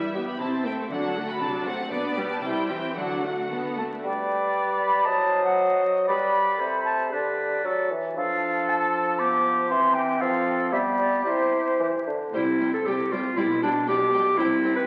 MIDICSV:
0, 0, Header, 1, 10, 480
1, 0, Start_track
1, 0, Key_signature, 1, "major"
1, 0, Tempo, 510204
1, 853, Time_signature, 2, 2, 24, 8
1, 2288, Tempo, 531915
1, 4208, Tempo, 512821
1, 7579, Key_signature, 0, "major"
1, 9968, Tempo, 538117
1, 11408, Tempo, 512821
1, 13785, End_track
2, 0, Start_track
2, 0, Title_t, "Flute"
2, 0, Program_c, 0, 73
2, 3505, Note_on_c, 0, 81, 46
2, 3559, Note_off_c, 0, 81, 0
2, 3735, Note_on_c, 0, 79, 49
2, 4429, Note_off_c, 0, 79, 0
2, 4437, Note_on_c, 0, 83, 56
2, 4668, Note_on_c, 0, 81, 61
2, 4682, Note_off_c, 0, 83, 0
2, 5033, Note_off_c, 0, 81, 0
2, 5039, Note_on_c, 0, 78, 55
2, 5389, Note_off_c, 0, 78, 0
2, 5632, Note_on_c, 0, 83, 77
2, 6313, Note_off_c, 0, 83, 0
2, 6350, Note_on_c, 0, 81, 53
2, 6590, Note_off_c, 0, 81, 0
2, 6596, Note_on_c, 0, 74, 44
2, 7319, Note_off_c, 0, 74, 0
2, 7585, Note_on_c, 0, 77, 60
2, 8077, Note_on_c, 0, 81, 54
2, 8091, Note_off_c, 0, 77, 0
2, 8543, Note_on_c, 0, 86, 62
2, 8557, Note_off_c, 0, 81, 0
2, 9009, Note_off_c, 0, 86, 0
2, 9015, Note_on_c, 0, 84, 65
2, 9246, Note_on_c, 0, 79, 75
2, 9260, Note_off_c, 0, 84, 0
2, 9495, Note_on_c, 0, 77, 73
2, 9509, Note_off_c, 0, 79, 0
2, 9970, Note_off_c, 0, 77, 0
2, 9978, Note_on_c, 0, 76, 66
2, 10032, Note_off_c, 0, 76, 0
2, 10199, Note_on_c, 0, 74, 63
2, 10436, Note_off_c, 0, 74, 0
2, 10442, Note_on_c, 0, 72, 66
2, 11153, Note_off_c, 0, 72, 0
2, 13785, End_track
3, 0, Start_track
3, 0, Title_t, "Violin section"
3, 0, Program_c, 1, 48
3, 0, Note_on_c, 1, 76, 53
3, 224, Note_off_c, 1, 76, 0
3, 245, Note_on_c, 1, 83, 52
3, 368, Note_off_c, 1, 83, 0
3, 377, Note_on_c, 1, 81, 50
3, 609, Note_on_c, 1, 79, 53
3, 617, Note_off_c, 1, 81, 0
3, 685, Note_off_c, 1, 79, 0
3, 850, Note_on_c, 1, 78, 62
3, 1198, Note_off_c, 1, 78, 0
3, 1202, Note_on_c, 1, 83, 62
3, 1319, Note_on_c, 1, 81, 56
3, 1322, Note_off_c, 1, 83, 0
3, 1557, Note_on_c, 1, 78, 69
3, 1558, Note_off_c, 1, 81, 0
3, 1793, Note_off_c, 1, 78, 0
3, 1794, Note_on_c, 1, 74, 62
3, 2154, Note_off_c, 1, 74, 0
3, 2176, Note_on_c, 1, 81, 60
3, 2286, Note_on_c, 1, 79, 55
3, 2293, Note_off_c, 1, 81, 0
3, 2764, Note_on_c, 1, 78, 48
3, 2765, Note_off_c, 1, 79, 0
3, 3484, Note_off_c, 1, 78, 0
3, 11422, Note_on_c, 1, 79, 40
3, 11496, Note_off_c, 1, 79, 0
3, 11665, Note_on_c, 1, 79, 43
3, 11740, Note_off_c, 1, 79, 0
3, 11914, Note_on_c, 1, 79, 47
3, 11989, Note_off_c, 1, 79, 0
3, 12147, Note_on_c, 1, 79, 39
3, 12222, Note_off_c, 1, 79, 0
3, 12387, Note_on_c, 1, 79, 46
3, 12462, Note_off_c, 1, 79, 0
3, 12622, Note_on_c, 1, 79, 50
3, 12697, Note_off_c, 1, 79, 0
3, 12846, Note_on_c, 1, 79, 56
3, 12921, Note_off_c, 1, 79, 0
3, 13084, Note_on_c, 1, 79, 51
3, 13159, Note_off_c, 1, 79, 0
3, 13334, Note_on_c, 1, 79, 53
3, 13409, Note_off_c, 1, 79, 0
3, 13562, Note_on_c, 1, 79, 53
3, 13637, Note_off_c, 1, 79, 0
3, 13785, End_track
4, 0, Start_track
4, 0, Title_t, "Violin section"
4, 0, Program_c, 2, 48
4, 0, Note_on_c, 2, 64, 36
4, 0, Note_on_c, 2, 71, 38
4, 112, Note_off_c, 2, 71, 0
4, 117, Note_off_c, 2, 64, 0
4, 140, Note_on_c, 2, 67, 34
4, 140, Note_on_c, 2, 76, 33
4, 366, Note_on_c, 2, 72, 34
4, 370, Note_off_c, 2, 72, 0
4, 370, Note_on_c, 2, 72, 36
4, 379, Note_off_c, 2, 67, 0
4, 380, Note_off_c, 2, 76, 0
4, 597, Note_off_c, 2, 72, 0
4, 612, Note_on_c, 2, 69, 33
4, 612, Note_on_c, 2, 76, 35
4, 831, Note_off_c, 2, 69, 0
4, 840, Note_on_c, 2, 66, 40
4, 843, Note_on_c, 2, 69, 41
4, 852, Note_off_c, 2, 76, 0
4, 1065, Note_off_c, 2, 66, 0
4, 1067, Note_off_c, 2, 69, 0
4, 1079, Note_on_c, 2, 66, 36
4, 1085, Note_on_c, 2, 69, 35
4, 1306, Note_off_c, 2, 69, 0
4, 1317, Note_on_c, 2, 69, 42
4, 1317, Note_on_c, 2, 74, 43
4, 1319, Note_off_c, 2, 66, 0
4, 1540, Note_off_c, 2, 69, 0
4, 1540, Note_off_c, 2, 74, 0
4, 1545, Note_on_c, 2, 66, 40
4, 1545, Note_on_c, 2, 72, 39
4, 1792, Note_off_c, 2, 66, 0
4, 1792, Note_off_c, 2, 72, 0
4, 1796, Note_on_c, 2, 74, 50
4, 1798, Note_on_c, 2, 71, 45
4, 2023, Note_off_c, 2, 74, 0
4, 2025, Note_off_c, 2, 71, 0
4, 2035, Note_on_c, 2, 71, 43
4, 2036, Note_on_c, 2, 67, 40
4, 2276, Note_on_c, 2, 64, 45
4, 2276, Note_on_c, 2, 72, 41
4, 2284, Note_off_c, 2, 67, 0
4, 2284, Note_off_c, 2, 71, 0
4, 2502, Note_off_c, 2, 64, 0
4, 2502, Note_off_c, 2, 72, 0
4, 2530, Note_on_c, 2, 67, 41
4, 2531, Note_on_c, 2, 76, 39
4, 2768, Note_off_c, 2, 67, 0
4, 2769, Note_off_c, 2, 76, 0
4, 2769, Note_on_c, 2, 69, 38
4, 2770, Note_on_c, 2, 66, 42
4, 2994, Note_off_c, 2, 69, 0
4, 2995, Note_off_c, 2, 66, 0
4, 3017, Note_on_c, 2, 62, 36
4, 3018, Note_on_c, 2, 66, 34
4, 3249, Note_off_c, 2, 66, 0
4, 3256, Note_on_c, 2, 69, 37
4, 3258, Note_off_c, 2, 62, 0
4, 3260, Note_on_c, 2, 66, 34
4, 3487, Note_off_c, 2, 66, 0
4, 3496, Note_on_c, 2, 62, 33
4, 3498, Note_on_c, 2, 66, 31
4, 3500, Note_off_c, 2, 69, 0
4, 3739, Note_off_c, 2, 62, 0
4, 3740, Note_off_c, 2, 66, 0
4, 11413, Note_on_c, 2, 72, 50
4, 11488, Note_off_c, 2, 72, 0
4, 11658, Note_on_c, 2, 72, 39
4, 11733, Note_off_c, 2, 72, 0
4, 11899, Note_on_c, 2, 72, 43
4, 11973, Note_off_c, 2, 72, 0
4, 12148, Note_on_c, 2, 72, 44
4, 12223, Note_off_c, 2, 72, 0
4, 12382, Note_on_c, 2, 74, 54
4, 12457, Note_off_c, 2, 74, 0
4, 12622, Note_on_c, 2, 74, 46
4, 12697, Note_off_c, 2, 74, 0
4, 12865, Note_on_c, 2, 74, 51
4, 12940, Note_off_c, 2, 74, 0
4, 13112, Note_on_c, 2, 74, 51
4, 13186, Note_off_c, 2, 74, 0
4, 13338, Note_on_c, 2, 72, 58
4, 13412, Note_off_c, 2, 72, 0
4, 13582, Note_on_c, 2, 72, 53
4, 13657, Note_off_c, 2, 72, 0
4, 13785, End_track
5, 0, Start_track
5, 0, Title_t, "Oboe"
5, 0, Program_c, 3, 68
5, 3744, Note_on_c, 3, 74, 36
5, 4684, Note_on_c, 3, 75, 49
5, 4698, Note_off_c, 3, 74, 0
5, 5622, Note_off_c, 3, 75, 0
5, 5627, Note_on_c, 3, 74, 49
5, 6117, Note_on_c, 3, 72, 41
5, 6131, Note_off_c, 3, 74, 0
5, 6609, Note_on_c, 3, 71, 38
5, 6623, Note_off_c, 3, 72, 0
5, 7108, Note_on_c, 3, 69, 34
5, 7122, Note_off_c, 3, 71, 0
5, 7343, Note_off_c, 3, 69, 0
5, 7590, Note_on_c, 3, 69, 47
5, 8549, Note_on_c, 3, 67, 44
5, 8563, Note_off_c, 3, 69, 0
5, 9495, Note_on_c, 3, 69, 52
5, 9509, Note_off_c, 3, 67, 0
5, 9975, Note_on_c, 3, 67, 59
5, 9988, Note_off_c, 3, 69, 0
5, 11172, Note_off_c, 3, 67, 0
5, 13785, End_track
6, 0, Start_track
6, 0, Title_t, "Clarinet"
6, 0, Program_c, 4, 71
6, 3748, Note_on_c, 4, 71, 39
6, 4686, Note_on_c, 4, 72, 52
6, 4700, Note_off_c, 4, 71, 0
6, 5623, Note_off_c, 4, 72, 0
6, 5629, Note_on_c, 4, 71, 46
6, 6099, Note_on_c, 4, 69, 45
6, 6113, Note_off_c, 4, 71, 0
6, 6594, Note_on_c, 4, 67, 36
6, 6608, Note_off_c, 4, 69, 0
6, 7087, Note_off_c, 4, 67, 0
6, 7091, Note_on_c, 4, 66, 35
6, 7330, Note_off_c, 4, 66, 0
6, 7569, Note_on_c, 4, 62, 44
6, 8553, Note_on_c, 4, 59, 41
6, 8567, Note_off_c, 4, 62, 0
6, 9012, Note_on_c, 4, 60, 51
6, 9026, Note_off_c, 4, 59, 0
6, 9976, Note_on_c, 4, 59, 57
6, 9989, Note_off_c, 4, 60, 0
6, 10446, Note_off_c, 4, 59, 0
6, 10451, Note_on_c, 4, 64, 48
6, 11158, Note_off_c, 4, 64, 0
6, 11426, Note_on_c, 4, 64, 60
6, 11759, Note_off_c, 4, 64, 0
6, 11788, Note_on_c, 4, 69, 67
6, 11906, Note_on_c, 4, 67, 59
6, 11920, Note_off_c, 4, 69, 0
6, 12150, Note_on_c, 4, 65, 63
6, 12164, Note_off_c, 4, 67, 0
6, 12386, Note_on_c, 4, 64, 71
6, 12400, Note_off_c, 4, 65, 0
6, 12623, Note_off_c, 4, 64, 0
6, 12629, Note_on_c, 4, 62, 74
6, 12858, Note_off_c, 4, 62, 0
6, 12865, Note_on_c, 4, 67, 78
6, 13325, Note_on_c, 4, 64, 81
6, 13339, Note_off_c, 4, 67, 0
6, 13679, Note_off_c, 4, 64, 0
6, 13684, Note_on_c, 4, 71, 80
6, 13785, Note_off_c, 4, 71, 0
6, 13785, End_track
7, 0, Start_track
7, 0, Title_t, "Viola section"
7, 0, Program_c, 5, 48
7, 0, Note_on_c, 5, 55, 33
7, 0, Note_on_c, 5, 64, 37
7, 113, Note_off_c, 5, 55, 0
7, 113, Note_off_c, 5, 64, 0
7, 125, Note_on_c, 5, 59, 31
7, 125, Note_on_c, 5, 67, 34
7, 369, Note_on_c, 5, 60, 35
7, 371, Note_on_c, 5, 64, 32
7, 372, Note_off_c, 5, 59, 0
7, 372, Note_off_c, 5, 67, 0
7, 596, Note_off_c, 5, 60, 0
7, 597, Note_off_c, 5, 64, 0
7, 615, Note_on_c, 5, 60, 33
7, 618, Note_on_c, 5, 57, 33
7, 854, Note_off_c, 5, 60, 0
7, 855, Note_off_c, 5, 57, 0
7, 860, Note_on_c, 5, 62, 38
7, 863, Note_on_c, 5, 54, 34
7, 1076, Note_off_c, 5, 62, 0
7, 1078, Note_off_c, 5, 54, 0
7, 1090, Note_on_c, 5, 57, 36
7, 1090, Note_on_c, 5, 66, 36
7, 1325, Note_off_c, 5, 57, 0
7, 1325, Note_off_c, 5, 66, 0
7, 1327, Note_on_c, 5, 54, 38
7, 1332, Note_on_c, 5, 62, 39
7, 1546, Note_off_c, 5, 54, 0
7, 1548, Note_off_c, 5, 62, 0
7, 1565, Note_on_c, 5, 60, 40
7, 1568, Note_on_c, 5, 57, 35
7, 1797, Note_on_c, 5, 59, 47
7, 1801, Note_on_c, 5, 62, 46
7, 1802, Note_off_c, 5, 60, 0
7, 1804, Note_off_c, 5, 57, 0
7, 2024, Note_off_c, 5, 59, 0
7, 2026, Note_off_c, 5, 62, 0
7, 2044, Note_on_c, 5, 59, 45
7, 2048, Note_on_c, 5, 55, 42
7, 2274, Note_off_c, 5, 55, 0
7, 2284, Note_on_c, 5, 64, 41
7, 2285, Note_on_c, 5, 55, 36
7, 2288, Note_off_c, 5, 59, 0
7, 2506, Note_off_c, 5, 64, 0
7, 2507, Note_off_c, 5, 55, 0
7, 2518, Note_on_c, 5, 60, 36
7, 2522, Note_on_c, 5, 52, 39
7, 2762, Note_off_c, 5, 60, 0
7, 2764, Note_off_c, 5, 52, 0
7, 2767, Note_on_c, 5, 54, 36
7, 2767, Note_on_c, 5, 62, 33
7, 2993, Note_off_c, 5, 54, 0
7, 2993, Note_off_c, 5, 62, 0
7, 3007, Note_on_c, 5, 57, 32
7, 3013, Note_on_c, 5, 66, 32
7, 3248, Note_on_c, 5, 59, 43
7, 3253, Note_off_c, 5, 57, 0
7, 3256, Note_off_c, 5, 66, 0
7, 3479, Note_off_c, 5, 59, 0
7, 3495, Note_on_c, 5, 57, 37
7, 3739, Note_off_c, 5, 57, 0
7, 11415, Note_on_c, 5, 55, 41
7, 11490, Note_off_c, 5, 55, 0
7, 11668, Note_on_c, 5, 55, 39
7, 11743, Note_off_c, 5, 55, 0
7, 11905, Note_on_c, 5, 55, 38
7, 11980, Note_off_c, 5, 55, 0
7, 12147, Note_on_c, 5, 55, 38
7, 12222, Note_off_c, 5, 55, 0
7, 12386, Note_on_c, 5, 55, 51
7, 12460, Note_off_c, 5, 55, 0
7, 12626, Note_on_c, 5, 55, 46
7, 12701, Note_off_c, 5, 55, 0
7, 12860, Note_on_c, 5, 55, 45
7, 12935, Note_off_c, 5, 55, 0
7, 13103, Note_on_c, 5, 55, 44
7, 13178, Note_off_c, 5, 55, 0
7, 13335, Note_on_c, 5, 60, 52
7, 13410, Note_off_c, 5, 60, 0
7, 13571, Note_on_c, 5, 60, 51
7, 13646, Note_off_c, 5, 60, 0
7, 13785, End_track
8, 0, Start_track
8, 0, Title_t, "Bassoon"
8, 0, Program_c, 6, 70
8, 3743, Note_on_c, 6, 55, 43
8, 4679, Note_on_c, 6, 54, 54
8, 4693, Note_off_c, 6, 55, 0
8, 5632, Note_off_c, 6, 54, 0
8, 5639, Note_on_c, 6, 55, 53
8, 6080, Note_off_c, 6, 55, 0
8, 6118, Note_on_c, 6, 48, 46
8, 6590, Note_off_c, 6, 48, 0
8, 6604, Note_on_c, 6, 50, 41
8, 7083, Note_off_c, 6, 50, 0
8, 7090, Note_on_c, 6, 54, 38
8, 7339, Note_on_c, 6, 52, 40
8, 7353, Note_off_c, 6, 54, 0
8, 7579, Note_off_c, 6, 52, 0
8, 7585, Note_on_c, 6, 53, 48
8, 9022, Note_on_c, 6, 52, 62
8, 9036, Note_off_c, 6, 53, 0
8, 9490, Note_off_c, 6, 52, 0
8, 9495, Note_on_c, 6, 53, 62
8, 9961, Note_off_c, 6, 53, 0
8, 9974, Note_on_c, 6, 55, 61
8, 10436, Note_off_c, 6, 55, 0
8, 10449, Note_on_c, 6, 48, 52
8, 10873, Note_off_c, 6, 48, 0
8, 10936, Note_on_c, 6, 52, 52
8, 11043, Note_off_c, 6, 52, 0
8, 11174, Note_on_c, 6, 50, 49
8, 11406, Note_off_c, 6, 50, 0
8, 13785, End_track
9, 0, Start_track
9, 0, Title_t, "Cello section"
9, 0, Program_c, 7, 48
9, 0, Note_on_c, 7, 40, 50
9, 296, Note_off_c, 7, 40, 0
9, 379, Note_on_c, 7, 48, 53
9, 778, Note_off_c, 7, 48, 0
9, 857, Note_on_c, 7, 50, 52
9, 1249, Note_off_c, 7, 50, 0
9, 1332, Note_on_c, 7, 48, 53
9, 1726, Note_off_c, 7, 48, 0
9, 1802, Note_on_c, 7, 47, 60
9, 2209, Note_off_c, 7, 47, 0
9, 2288, Note_on_c, 7, 48, 52
9, 2687, Note_off_c, 7, 48, 0
9, 2770, Note_on_c, 7, 50, 47
9, 3177, Note_off_c, 7, 50, 0
9, 3254, Note_on_c, 7, 50, 45
9, 3663, Note_off_c, 7, 50, 0
9, 11415, Note_on_c, 7, 48, 54
9, 11842, Note_off_c, 7, 48, 0
9, 11904, Note_on_c, 7, 48, 51
9, 12326, Note_off_c, 7, 48, 0
9, 12389, Note_on_c, 7, 47, 57
9, 12806, Note_off_c, 7, 47, 0
9, 12855, Note_on_c, 7, 47, 61
9, 13274, Note_off_c, 7, 47, 0
9, 13332, Note_on_c, 7, 48, 61
9, 13751, Note_off_c, 7, 48, 0
9, 13785, End_track
10, 0, Start_track
10, 0, Title_t, "Double bass section"
10, 0, Program_c, 8, 48
10, 11415, Note_on_c, 8, 36, 51
10, 11842, Note_off_c, 8, 36, 0
10, 11905, Note_on_c, 8, 36, 50
10, 12326, Note_off_c, 8, 36, 0
10, 12384, Note_on_c, 8, 35, 58
10, 12804, Note_off_c, 8, 35, 0
10, 12862, Note_on_c, 8, 35, 50
10, 13278, Note_off_c, 8, 35, 0
10, 13337, Note_on_c, 8, 36, 62
10, 13754, Note_off_c, 8, 36, 0
10, 13785, End_track
0, 0, End_of_file